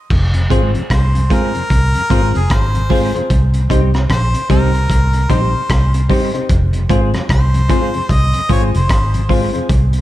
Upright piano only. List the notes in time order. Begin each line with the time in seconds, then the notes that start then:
0.50 C4 F4 G#4 C5
1.30 C4 F4 G#4 C5
1.54 G#4 C5
2.10 C4 F4 G#4 C5
2.90 C4 F4 G#4 C5
3.14 C4 F4 G#4 C5
3.69 C4 D#4 G4 C5
4.49 C4 D#4 G4 C5
4.74 G4 C5
5.29 C4 D#4 G4 C5
6.09 C4 D#4 G4 C5
6.33 C4 D#4 G4 C5
6.89 C4 F4 G#4 C5
7.69 C4 F4 G#4 C5
7.94 G#4 C5
8.49 C4 F4 G#4 C5
9.29 C4 F4 G#4 C5
9.53 C4 F4 G#4 C5